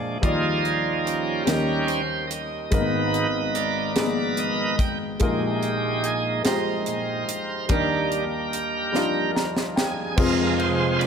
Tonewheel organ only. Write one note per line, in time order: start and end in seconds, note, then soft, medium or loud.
0.00 0.18 A#2 soft
0.00 0.18 G#3 soft
0.00 0.18 D4 soft
0.23 1.43 D#3 soft
0.23 1.44 F3 soft
0.23 1.44 A#3 medium
0.23 1.44 D#4 medium
0.23 1.44 F4 medium
0.23 1.09 G#4 medium
1.05 1.46 C#4 soft
1.05 2.26 G4 soft
1.05 1.84 A#4 medium
1.46 2.01 D#3 soft
1.46 2.02 G3 soft
1.46 2.02 C#4 soft
1.87 2.31 C5 medium
2.27 2.71 D#5 medium
2.72 3.27 G#2 soft
2.72 3.27 D#3 soft
2.72 3.27 B3 medium
2.72 3.93 D#4 medium
2.72 3.56 B4 medium
3.55 4.76 A#4 medium
3.55 4.76 B4 medium
3.55 4.40 D5 medium
4.39 4.81 D#5 medium
4.80 4.98 G5 medium
5.23 6.42 A#2 medium
5.23 6.42 G#3 soft
5.23 6.43 D#4 medium
5.23 6.07 G4 medium
6.05 6.24 G#4 medium
6.46 6.87 D#4 medium
6.46 7.66 A#4 medium
6.46 7.73 C5 medium
6.88 7.25 A#2 soft
6.88 7.25 G#3 soft
6.88 7.25 D#4 soft
7.69 8.24 D#3 soft
7.69 8.25 G3 soft
7.69 9.32 A#3 medium
7.69 9.32 G4 medium
7.69 9.31 A#4 medium
7.69 8.25 D5 medium
9.77 10.19 G#4 medium
10.18 11.07 F2 medium
10.18 11.07 C3 medium
10.18 11.07 G#3 medium
10.18 10.98 F4 medium
10.18 10.60 A#4 medium
10.58 11.01 C5 medium
10.99 11.07 D4 medium
10.99 11.07 F4 medium
10.99 11.07 B4 loud